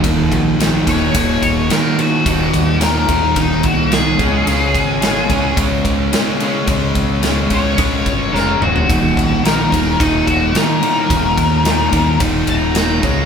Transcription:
<<
  \new Staff \with { instrumentName = "Lead electric guitar" } { \time 4/4 \key des \lydian \tempo 4 = 109 r4. des''4. bes'8 ges'8~ | ges'4 bes'4 ees'8 ges'8 aes'4~ | aes'2 r2 | r4. des''4. bes'8 ges'8~ |
ges'4 bes'4 ees'8 ges'8 bes'4~ | bes'2 r8 bes''4. | }
  \new Staff \with { instrumentName = "Distorted electric guitar" } { \clef bass \time 4/4 \key des \lydian <ees, bes, ees>4 <ees, bes, ees>8 <ees, bes, ees>8 <ees, bes, ees>4 <ees, bes, ees>8 <ees, bes, ees>8 | <ees, bes, ees>4 <ees, bes, ees>8 <ees, bes, ees>8 <ees, bes, ees>4 <ees, bes, ees>8 <des aes des'>8 | <des aes des'>4 <des aes des'>8 <des aes des'>8 <des aes des'>4 <des aes des'>8 <des aes des'>8 | <des aes des'>4 <des aes des'>8 <des aes des'>8 <des aes des'>4 <des aes des'>8 <des aes des'>8 |
<ees, bes, ees>4 <ees, bes, ees>8 <ees, bes, ees>8 <ees, bes, ees>4 <ees, bes, ees>8 <ees, bes, ees>8 | <ees, bes, ees>4 <ees, bes, ees>8 <ees, bes, ees>8 <ees, bes, ees>4 <ees, bes, ees>8 <des aes des'>8 | }
  \new Staff \with { instrumentName = "Overdriven electric guitar" } { \clef bass \time 4/4 \key des \lydian <ees, bes, ees>4 <ees, bes, ees>8 <ees, bes, ees>8 <ees, bes, ees>4 <ees, bes, ees>8 <ees, bes, ees>8 | <ees, bes, ees>4 <ees, bes, ees>8 <ees, bes, ees>8 <ees, bes, ees>4 <ees, bes, ees>8 <des aes des'>8 | <des aes des'>4 <des aes des'>8 <des aes des'>8 <des aes des'>4 <des aes des'>8 <des aes des'>8 | <des aes des'>4 <des aes des'>8 <des aes des'>8 <des aes des'>4 <des aes des'>8 <des aes des'>8 |
<ees, bes, ees>4 <ees, bes, ees>8 <ees, bes, ees>8 <ees, bes, ees>4 <ees, bes, ees>8 <ees, bes, ees>8 | <ees, bes, ees>4 <ees, bes, ees>8 <ees, bes, ees>8 <ees, bes, ees>4 <ees, bes, ees>8 <des aes des'>8 | }
  \new Staff \with { instrumentName = "Fingered electric bass" } { \clef bass \time 4/4 \key des \lydian ees,,8 bes,,4 ees,,8 ees,,8 ees,,8 r4 | ees,,8 ees,4 ees,8 ees,,8 c,4 des,8 | des,8 aes,,4 des,8 des,8 des,8 r4 | des,8 des,4 des,8 des,8 g,,8 f,,8 ees,,8 |
ees,,8 bes,,4 ees,,8 ees,,8 ees,,8 r4 | ees,,8 ees,4 ees,8 ees,,8 ees,,4 des,8 | }
  \new DrumStaff \with { instrumentName = "Drums" } \drummode { \time 4/4 <bd cymr>8 <bd cymr>8 <cymr sn>8 <bd cymr>8 <bd cymr>8 <bd cymr>8 <cymr sn>8 cymr8 | <bd cymr>8 <bd cymr>8 <cymr sn>8 <bd cymr>8 <bd cymr>8 <bd cymr>8 <cymr sn>8 <bd cymr>8 | cymr8 <bd cymr>8 <cymr sn>8 <bd cymr>8 <bd cymr>8 <bd cymr>8 <cymr sn>8 cymr8 | <bd cymr>8 <bd cymr>8 <cymr sn>8 <bd cymr>8 <bd cymr>8 <bd cymr>8 sn8 toml16 tomfh16 |
<bd cymr>8 <bd cymr>8 <cymr sn>8 <bd cymr>8 <bd cymr>8 <bd cymr>8 <cymr sn>8 cymr8 | <bd cymr>8 <bd cymr>8 <cymr sn>8 <bd cymr>8 <bd cymr>8 <bd cymr>8 <cymr sn>8 <bd cymr>8 | }
>>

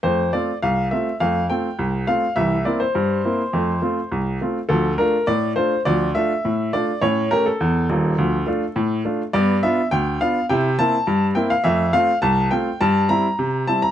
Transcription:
<<
  \new Staff \with { instrumentName = "Grand piano" } { \time 2/4 \key f \major \tempo 4 = 103 c''8 d''8 f''8 e''8 | f''8 g''4 f''8 | e''8 d''16 c''4~ c''16~ | c''4. r8 |
a'8 bes'8 d''8 c''8 | d''8 e''4 d''8 | cis''8 bes'16 a'4~ a'16~ | a'4. r8 |
d''8 e''8 g''8 f''8 | g''8 a''4 g''16 f''16 | e''8 f''8 a''8 g''8 | a''8 bes''4 a''16 bes''16 | }
  \new Staff \with { instrumentName = "Grand piano" } { \time 2/4 \key f \major <f, a>8 <a c' f'>8 c,8 <a c' f'>8 | <f, a>8 <a c' f'>8 c,8 <a c' f'>8 | <c, e>8 <bes c' e'>8 g,8 <bes c' e'>8 | <f, a>8 <a c' f'>8 c,8 <a c' f'>8 |
<d, f>8 <a d' f'>8 a,8 <a d' f'>8 | <d, f>8 <a d' f'>8 a,8 <a d' f'>8 | <a, cis'>8 <a cis' g'>8 e,8 <ees,, ees,>8 | <d, f>8 <a d' f'>8 a,8 <a d' f'>8 |
<g, b>8 <b d' f'>8 d,8 <b d' f'>8 | <c e'>8 <bes c' e'>8 g,8 <bes c' e'>8 | <f, a>8 <a c' f'>8 c,8 <a c' f'>8 | g,8 <g c' e'>8 c8 <g c' e'>8 | }
>>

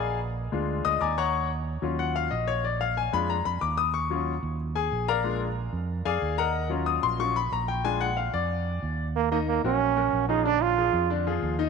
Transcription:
<<
  \new Staff \with { instrumentName = "Grand piano" } { \time 4/4 \key ees \minor \tempo 4 = 184 << { <aes' d'' f'' aes''>8 r2 <ees'' ees'''>8 <d'' aes'' bes'' d'''>8 <des'' ges'' bes'' des'''>8~ | <des'' ges'' bes'' des'''>8 r4. ges''8 f''8 ees''8 des''8 | d''8 f''8 aes''8 ces'''8 bes''8 ces'''8 d'''8 ees'''8 | des'''2 r8 <aes' aes''>4 <bes' d'' f'' bes''>8~ |
<bes' d'' f'' bes''>8 r2 <aes' d'' f'' aes''>4 <bes' ees'' ges'' bes''>8~ | <bes' ees'' ges'' bes''>8 r8 ees'''8 c'''8 des'''8 ces'''8 bes''8 g''8 | aes''8 ges''8 f''8 d''2~ d''16 r16 | r8 <ees ees' ees''>4 <ges ges' bes'>4 <ges ges' bes'>4 <f f' aes'>8 |
<d d' d''>4 <f f' aes'>4 <d d' d''>8 <f f' aes'>4 <ees ees' ees''>8 | } \\ { r4. <aes d' f'>4. r4 | r4. <ges des' f'>4. r4 | r4. <aes d' f'>8 r2 | r8 <ges des' f'>8 r2. |
<aes d' f'>8 r2. r8 | r8 <ges des' f'>4. <ges des' f'>8 r4. | <aes d' f'>8 r2. r8 | r1 |
r1 | } >> }
  \new Staff \with { instrumentName = "Trombone" } { \time 4/4 \key ees \minor r1 | r1 | r1 | r1 |
r1 | r1 | r1 | bes8 bes8 bes8 des'2 ees'8 |
d'8 f'4. r2 | }
  \new Staff \with { instrumentName = "Fingered electric bass" } { \clef bass \time 4/4 \key ees \minor bes,,4. d,4 d,8 ees,4~ | ees,4. ees,4. bes,,4~ | bes,,4. f,4 f,8 ees,4~ | ees,4. ees,4. bes,,4~ |
bes,,4. f,4 f,8 ees,4~ | ees,4. bes,,4. bes,,4~ | bes,,4. f,4. ees,4~ | ees,4. bes,,4. bes,,4~ |
bes,,4. f,4. ees,4 | }
>>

